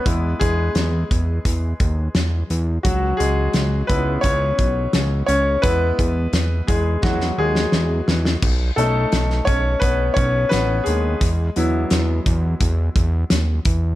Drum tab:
CC |----------------|----------------|----------------|x---------------|
HH |x-x-x-x-x-x-x-x-|x-x-x-x-x-x-x-x-|x-x-x-x---------|--x-x-x-x-x-x-x-|
SD |----o-------o---|----o-------o---|----o---oo-oo-oo|----oo------o---|
BD |o-o---o-o-o-----|o-----o-o-o-----|o-o---o-o-------|o-----o-o-o-----|

CC |----------------|
HH |x-x-x-x-x-x-x-x-|
SD |----o-------o---|
BD |o-----o-o-o---o-|